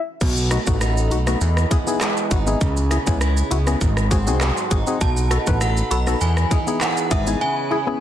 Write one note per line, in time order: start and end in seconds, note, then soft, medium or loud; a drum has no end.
0.21 0.58 B1 loud
0.21 1.41 B2 medium
0.21 1.40 A4 medium
0.21 2.59 D#5 medium
0.21 1.40 F#5 medium
0.21 3.78 B5 medium
0.21 kick loud
0.21 crash loud
0.21 shaker medium
0.37 shaker medium
0.51 1.10 A3 medium
0.51 0.57 D#4 medium
0.51 0.58 F#4 loud
0.51 cross-stick loud
0.51 closed hi-hat medium
0.51 shaker medium
0.67 1.13 A1 medium
0.67 0.78 A3 medium
0.67 0.78 B3 medium
0.67 0.78 D#4 medium
0.67 0.79 F#4 medium
0.67 kick loud
0.67 shaker medium
0.81 1.48 D#4 medium
0.81 cross-stick loud
0.81 shaker medium
0.97 shaker soft
1.11 1.35 B1 medium
1.11 1.48 A3 medium
1.11 1.17 D#4 medium
1.11 1.18 F#4 loud
1.11 closed hi-hat medium
1.11 shaker medium
1.27 1.38 A3 medium
1.27 1.38 B3 medium
1.27 1.38 D#4 medium
1.27 1.39 F#4 medium
1.27 cross-stick loud
1.27 shaker medium
1.41 1.65 E2 loud
1.41 2.61 E3 medium
1.41 3.79 G#4 medium
1.41 3.79 G#5 medium
1.41 shaker medium
1.57 cross-stick medium
1.57 shaker soft
1.71 2.68 B3 medium
1.71 1.77 E4 loud
1.71 1.78 G#4 loud
1.71 kick medium
1.71 closed hi-hat medium
1.71 shaker medium
1.87 1.98 B3 medium
1.87 1.98 D#4 medium
1.87 1.98 E4 medium
1.87 1.99 G#4 medium
1.87 shaker medium
2.01 4.41 G#3 medium
2.01 cross-stick loud
2.01 clap loud
2.01 shaker medium
2.17 shaker medium
2.31 2.55 G#1 loud
2.31 2.68 D#4 medium
2.31 2.37 E4 medium
2.31 2.38 F#4 loud
2.31 kick medium
2.31 closed hi-hat medium
2.31 shaker medium
2.46 2.58 B3 medium
2.46 2.58 D#4 medium
2.46 2.58 E4 medium
2.46 2.59 G#4 medium
2.46 shaker medium
2.61 2.98 C#2 loud
2.61 3.88 C#3 medium
2.61 3.80 C#5 medium
2.61 kick loud
2.61 shaker medium
2.77 shaker medium
2.91 3.50 B3 medium
2.91 2.97 E4 medium
2.91 2.98 G#4 loud
2.91 cross-stick medium
2.91 closed hi-hat medium
2.91 shaker medium
3.06 3.43 C#2 medium
3.06 3.18 B3 medium
3.06 3.18 C#4 medium
3.06 3.18 E4 medium
3.06 3.19 G#4 medium
3.06 kick loud
3.06 shaker medium
3.21 3.88 E4 medium
3.21 cross-stick loud
3.21 shaker medium
3.37 shaker medium
3.51 3.75 C#2 medium
3.51 3.88 B3 medium
3.51 3.57 E4 medium
3.51 3.58 F#4 loud
3.51 closed hi-hat medium
3.51 shaker medium
3.67 3.78 B3 medium
3.67 3.78 C#4 medium
3.67 3.78 E4 medium
3.67 3.79 G#4 medium
3.67 cross-stick medium
3.67 shaker medium
3.81 4.28 G#1 loud
3.81 5.01 G#2 medium
3.81 5.00 G#4 medium
3.81 6.19 F#5 medium
3.81 5.00 C6 medium
3.81 kick loud
3.81 shaker medium
3.97 cross-stick medium
3.97 shaker soft
4.11 5.08 C4 medium
4.11 4.17 F#4 loud
4.11 4.18 G#4 loud
4.11 kick medium
4.11 closed hi-hat medium
4.11 shaker medium
4.27 4.51 C2 medium
4.27 4.38 C4 medium
4.27 4.38 D#4 medium
4.27 4.38 F#4 medium
4.27 4.39 G#4 loud
4.27 shaker medium
4.41 5.08 F#3 medium
4.41 cross-stick loud
4.41 clap loud
4.41 shaker medium
4.57 shaker medium
4.71 4.84 G#1 medium
4.71 5.31 D#4 medium
4.71 4.77 F#4 medium
4.71 4.78 G#4 loud
4.71 kick loud
4.71 closed hi-hat medium
4.71 shaker medium
4.87 4.98 C4 medium
4.87 4.98 D#4 medium
4.87 4.98 F#4 medium
4.87 4.99 G#4 medium
4.87 shaker medium
5.01 5.38 B1 loud
5.01 6.28 B2 medium
5.01 6.20 A4 medium
5.01 5.63 A5 loud
5.01 7.39 B5 medium
5.01 kick loud
5.01 shaker medium
5.17 shaker medium
5.31 5.90 D#4 medium
5.31 5.37 F#4 medium
5.31 5.38 A4 loud
5.31 cross-stick loud
5.31 closed hi-hat medium
5.31 shaker medium
5.47 5.83 A1 medium
5.47 5.58 B3 medium
5.47 5.58 D#4 medium
5.47 5.58 F#4 medium
5.47 5.59 B4 medium
5.47 kick loud
5.47 shaker medium
5.61 6.28 A4 medium
5.61 5.92 F#5 medium
5.61 cross-stick loud
5.61 shaker medium
5.77 shaker soft
5.91 6.15 B1 medium
5.91 6.28 D#4 medium
5.91 5.97 F#4 medium
5.91 5.98 A4 loud
5.91 6.05 B5 loud
5.91 closed hi-hat medium
5.91 shaker medium
6.07 6.18 B3 medium
6.07 6.18 D#4 medium
6.07 6.19 F#4 medium
6.07 6.19 A4 medium
6.07 cross-stick loud
6.07 shaker medium
6.21 6.45 E2 loud
6.21 7.41 E3 medium
6.21 8.00 G#4 medium
6.21 6.83 G#5 loud
6.21 8.00 G#5 medium
6.21 shaker medium
6.37 cross-stick loud
6.37 shaker medium
6.51 7.48 D#4 medium
6.51 6.57 E4 loud
6.51 6.58 G#4 loud
6.51 kick medium
6.51 closed hi-hat medium
6.51 shaker medium
6.67 6.78 B3 medium
6.67 6.78 D#4 medium
6.67 6.79 E4 medium
6.67 6.79 G#4 loud
6.67 shaker medium
6.81 7.48 B3 medium
6.81 7.12 F#5 medium
6.81 cross-stick loud
6.81 clap loud
6.81 shaker medium
6.97 shaker medium
7.11 7.35 G#1 medium
7.11 7.17 E4 medium
7.11 8.00 G#4 medium
7.11 7.18 G#4 loud
7.11 7.42 E5 medium
7.11 kick medium
7.11 closed hi-hat medium
7.11 shaker medium
7.27 7.38 B3 medium
7.27 7.38 D#4 medium
7.27 7.39 E4 medium
7.27 7.39 G#4 medium
7.27 shaker medium
7.41 8.00 C#3 medium
7.41 8.00 C#5 medium
7.41 7.97 G#5 loud
7.41 8.00 B5 medium
7.71 7.77 E4 medium
7.71 8.00 E4 medium
7.71 7.78 G#4 loud
7.87 7.98 B3 medium
7.87 7.98 C#4 medium
7.87 7.98 E4 medium
7.87 7.99 G#4 medium